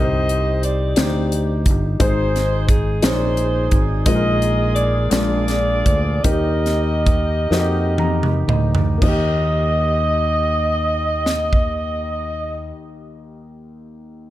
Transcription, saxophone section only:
Already playing: G4 C5 D#5
0.65 G4 D5
2.01 D#4 G#4 C5
2.69 G#4
3.03 D#4 G#4 C5
4.06 G#4 D#5
4.75 D5
5.11 F4 G#4 D5
6.23 G4 A#4 D#5
9.03 D#5

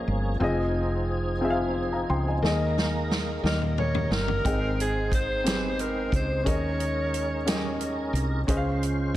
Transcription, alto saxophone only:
3.46 A#4
3.79 C#5
4.12 A#4
4.81 G#4
5.14 C5
5.81 A#4
6.16 C5
6.46 C#5

